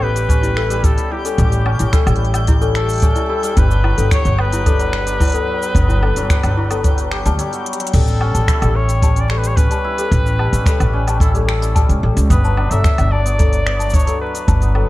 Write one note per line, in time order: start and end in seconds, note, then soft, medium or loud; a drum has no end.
0.00 0.94 A1 medium
0.00 0.42 G3 medium
0.00 3.07 B3 loud
0.00 0.29 C#4 medium
0.00 0.56 E4 medium
0.00 7.95 G4 medium
0.00 0.86 B4 loud
0.00 7.95 G5 medium
0.16 open hi-hat soft
0.16 cabasa medium
0.29 1.24 C#4 loud
0.29 kick loud
0.29 open hi-hat soft
0.29 cabasa medium
0.42 0.69 G3 medium
0.42 0.51 E4 medium
0.42 open hi-hat soft
0.42 cabasa soft
0.56 0.97 E4 loud
0.56 0.70 A4 loud
0.56 finger snap medium
0.70 1.10 G3 loud
0.70 open hi-hat soft
0.70 cabasa medium
0.84 1.13 A4 loud
0.84 kick loud
0.84 open hi-hat medium
0.84 cabasa medium
0.97 1.92 E4 medium
0.97 open hi-hat soft
0.97 cabasa soft
1.11 1.37 G3 medium
1.11 1.20 E4 medium
1.11 2.21 G4 medium
1.25 1.65 C#4 medium
1.25 1.38 A4 loud
1.25 open hi-hat soft
1.25 cabasa medium
1.38 1.76 A1 loud
1.38 1.78 G3 medium
1.38 kick loud
1.38 open hi-hat medium
1.38 cabasa medium
1.52 open hi-hat soft
1.52 cabasa soft
1.65 2.61 C#4 loud
1.65 low woodblock medium
1.79 1.91 A1 medium
1.79 2.05 G3 medium
1.79 1.87 E4 medium
1.79 open hi-hat soft
1.79 cabasa medium
1.93 2.33 E4 loud
1.93 2.06 A4 loud
1.93 finger snap medium
1.93 kick loud
1.93 open hi-hat medium
1.93 cabasa soft
2.06 3.12 A1 medium
2.06 2.46 G3 medium
2.06 open hi-hat soft
2.06 cabasa soft
2.06 low woodblock medium
2.16 open hi-hat soft
2.25 open hi-hat soft
2.33 3.29 E4 medium
2.33 open hi-hat soft
2.33 cabasa medium
2.33 low woodblock medium
2.47 2.74 G3 medium
2.47 2.56 E4 medium
2.47 kick loud
2.47 open hi-hat soft
2.47 cabasa medium
2.61 3.02 C#4 medium
2.61 2.74 A4 loud
2.61 cabasa soft
2.75 3.14 G3 medium
2.75 3.60 A4 loud
2.75 finger snap medium
2.75 open hi-hat soft
2.89 open hi-hat soft
2.89 cabasa medium
2.91 open hi-hat soft
2.93 open hi-hat soft
2.96 open hi-hat soft
2.98 open hi-hat soft
3.00 open hi-hat soft
3.02 3.76 C#4 loud
3.02 kick loud
3.02 open hi-hat medium
3.02 cabasa medium
3.16 3.42 G3 medium
3.16 3.24 E4 medium
3.16 open hi-hat soft
3.16 cabasa soft
3.29 6.77 E4 loud
3.29 3.42 A4 loud
3.43 3.62 G3 loud
3.43 open hi-hat soft
3.43 cabasa medium
3.57 3.94 G1 loud
3.57 4.12 B4 loud
3.57 kick medium
3.57 open hi-hat medium
3.57 cabasa medium
3.70 4.65 D4 medium
3.70 cabasa soft
3.84 4.10 F#3 medium
3.84 3.92 E4 medium
3.84 low woodblock medium
3.97 4.09 G1 medium
3.97 4.38 B3 medium
3.97 4.11 A4 loud
3.97 open hi-hat soft
3.97 cabasa medium
4.11 4.51 F#3 medium
4.11 4.42 C#5 loud
4.11 finger snap medium
4.11 kick loud
4.11 open hi-hat medium
4.11 cabasa medium
4.25 5.31 G1 medium
4.25 open hi-hat soft
4.25 cabasa soft
4.39 5.33 B3 medium
4.39 7.40 B4 loud
4.39 low woodblock medium
4.52 4.78 F#3 medium
4.52 4.60 E4 medium
4.52 open hi-hat soft
4.52 cabasa medium
4.66 5.06 D4 loud
4.66 4.79 A4 loud
4.66 kick loud
4.66 open hi-hat medium
4.66 cabasa medium
4.79 5.19 F#3 loud
4.79 open hi-hat soft
4.79 cabasa soft
4.93 finger snap medium
5.06 6.02 D4 medium
5.06 open hi-hat soft
5.06 cabasa medium
5.20 5.46 F#3 medium
5.20 5.28 E4 medium
5.20 kick loud
5.20 open hi-hat soft
5.20 cabasa medium
5.23 open hi-hat soft
5.25 open hi-hat soft
5.27 open hi-hat soft
5.30 open hi-hat soft
5.32 5.74 B3 medium
5.32 5.47 A4 loud
5.32 open hi-hat medium
5.34 open hi-hat soft
5.34 cabasa soft
5.47 5.88 F#3 medium
5.62 cabasa medium
5.75 6.12 G1 loud
5.75 6.71 B3 loud
5.75 kick loud
5.75 open hi-hat medium
5.75 cabasa medium
5.88 6.15 F#3 medium
5.88 5.96 E4 medium
5.88 cabasa soft
6.02 6.43 D4 loud
6.02 6.16 A4 loud
6.02 low woodblock medium
6.16 6.28 G1 medium
6.16 6.56 F#3 loud
6.16 open hi-hat medium
6.16 cabasa medium
6.30 finger snap medium
6.30 kick loud
6.30 open hi-hat medium
6.30 cabasa medium
6.43 7.25 G1 medium
6.43 8.27 D4 medium
6.43 open hi-hat soft
6.43 cabasa soft
6.43 low woodblock medium
6.57 6.83 F#3 medium
6.57 6.65 E4 medium
6.71 10.85 B3 medium
6.71 6.84 A4 loud
6.71 open hi-hat soft
6.71 cabasa medium
6.71 low woodblock medium
6.84 7.38 F#3 medium
6.84 kick loud
6.84 open hi-hat medium
6.84 cabasa medium
6.98 open hi-hat soft
6.98 cabasa soft
7.11 7.45 G4 loud
7.11 finger snap medium
7.26 7.39 D2 loud
7.26 7.93 G3 loud
7.26 7.38 A5 medium
7.26 open hi-hat soft
7.26 cabasa medium
7.39 7.79 F#3 loud
7.39 7.47 D5 loud
7.39 open hi-hat medium
7.39 cabasa medium
7.53 8.00 F#4 medium
7.53 open hi-hat soft
7.53 cabasa soft
7.66 closed hi-hat medium
7.73 closed hi-hat medium
7.80 7.99 F#3 medium
7.80 closed hi-hat medium
7.87 closed hi-hat medium
7.93 8.31 A1 loud
7.93 8.33 G3 medium
7.93 8.06 A4 medium
7.93 8.77 A4 loud
7.93 kick loud
7.93 open hi-hat medium
7.93 crash loud
7.93 cabasa medium
8.08 cabasa soft
8.21 9.16 C#4 loud
8.21 low woodblock medium
8.34 8.46 A1 medium
8.34 8.60 G3 medium
8.34 8.47 A5 medium
8.34 open hi-hat medium
8.34 cabasa medium
8.48 8.89 E4 loud
8.48 finger snap medium
8.48 kick loud
8.48 open hi-hat medium
8.48 cabasa medium
8.61 9.67 A1 medium
8.61 9.01 G3 loud
8.61 8.74 A4 medium
8.61 open hi-hat soft
8.61 cabasa soft
8.61 low woodblock medium
8.75 9.22 C#5 loud
8.89 9.84 E4 medium
8.89 open hi-hat soft
8.89 cabasa medium
9.02 9.29 G3 medium
9.02 9.16 A5 medium
9.02 kick loud
9.02 open hi-hat medium
9.02 cabasa soft
9.16 9.56 C#4 medium
9.16 open hi-hat soft
9.16 cabasa soft
9.20 9.31 D5 loud
9.29 9.69 G3 medium
9.29 9.43 A4 medium
9.29 9.39 C#5 medium
9.29 finger snap medium
9.38 9.49 B4 loud
9.44 9.58 C#5 loud
9.44 open hi-hat soft
9.44 cabasa medium
9.56 10.52 C#4 medium
9.56 11.20 B4 loud
9.56 kick loud
9.56 open hi-hat medium
9.56 cabasa medium
9.71 9.97 G3 medium
9.71 9.84 A5 medium
9.71 open hi-hat soft
9.71 cabasa soft
9.84 10.25 E4 loud
9.98 10.37 G3 loud
9.98 10.11 A4 medium
9.98 open hi-hat soft
9.98 cabasa medium
10.12 10.49 A1 loud
10.12 kick loud
10.12 open hi-hat medium
10.12 cabasa medium
10.25 11.20 E4 medium
10.25 cabasa soft
10.39 10.65 G3 medium
10.39 10.52 A5 medium
10.39 low woodblock medium
10.53 10.64 A1 medium
10.53 10.93 C#4 medium
10.53 open hi-hat soft
10.53 cabasa medium
10.66 11.06 G3 medium
10.66 10.80 A4 medium
10.66 finger snap medium
10.66 kick loud
10.66 open hi-hat medium
10.66 cabasa medium
10.80 11.85 A1 medium
10.80 open hi-hat soft
10.80 cabasa soft
10.80 low woodblock medium
10.93 11.89 C#4 loud
11.07 11.33 G3 medium
11.07 11.21 A5 medium
11.07 open hi-hat soft
11.07 cabasa medium
11.07 low woodblock medium
11.20 11.62 E4 loud
11.20 11.33 A4 medium
11.20 kick loud
11.20 open hi-hat medium
11.20 cabasa medium
11.34 11.74 G3 loud
11.34 11.48 A4 medium
11.34 open hi-hat soft
11.34 cabasa soft
11.48 11.99 A4 medium
11.48 finger snap medium
11.62 14.89 E4 medium
11.62 open hi-hat soft
11.62 cabasa medium
11.75 12.02 G3 medium
11.75 11.88 A5 loud
11.75 kick loud
11.75 open hi-hat medium
11.75 cabasa medium
11.89 12.00 C#2 medium
11.89 12.63 C#4 medium
11.89 open hi-hat soft
11.89 cabasa soft
12.03 12.14 A1 loud
12.03 12.35 G3 medium
12.03 12.16 A4 medium
12.17 12.28 C#2 loud
12.17 open hi-hat soft
12.17 cabasa medium
12.30 12.67 G1 loud
12.30 13.25 B3 loud
12.30 12.72 B4 loud
12.30 kick loud
12.30 open hi-hat medium
12.30 cabasa medium
12.44 12.70 F#3 medium
12.44 12.57 A5 medium
12.44 cabasa soft
12.57 12.98 D4 loud
12.57 low woodblock medium
12.70 12.82 G1 medium
12.70 13.10 F#3 loud
12.70 12.84 A4 medium
12.70 13.13 E5 loud
12.70 open hi-hat soft
12.70 cabasa medium
12.84 finger snap medium
12.84 kick loud
12.84 cabasa medium
12.98 14.04 G1 medium
12.98 13.93 D4 medium
12.98 open hi-hat soft
12.98 cabasa soft
12.98 low woodblock medium
13.11 13.37 F#3 medium
13.11 13.96 D5 loud
13.11 13.25 A5 medium
13.25 13.65 B3 medium
13.25 open hi-hat soft
13.25 cabasa medium
13.38 13.78 F#3 medium
13.38 13.52 A4 medium
13.38 kick loud
13.38 open hi-hat soft
13.38 cabasa medium
13.53 open hi-hat soft
13.53 cabasa soft
13.66 14.61 B3 loud
13.66 finger snap medium
13.79 14.06 F#3 medium
13.79 13.93 A5 medium
13.79 open hi-hat soft
13.79 cabasa medium
13.90 14.34 D4 loud
13.90 kick loud
13.90 open hi-hat medium
13.90 cabasa medium
13.94 14.21 C#5 loud
13.94 cabasa medium
13.99 cabasa soft
14.07 14.47 F#3 loud
14.07 14.20 A4 medium
14.07 open hi-hat soft
14.07 cabasa soft
14.21 14.89 B4 medium
14.34 14.89 D4 medium
14.34 open hi-hat soft
14.34 cabasa medium
14.48 14.85 G1 loud
14.48 14.74 F#3 medium
14.48 14.61 A5 medium
14.48 kick loud
14.48 open hi-hat medium
14.48 cabasa medium
14.62 14.89 B3 medium
14.62 open hi-hat soft
14.62 cabasa soft
14.75 14.89 F#3 medium
14.75 14.88 A4 medium
14.75 low woodblock medium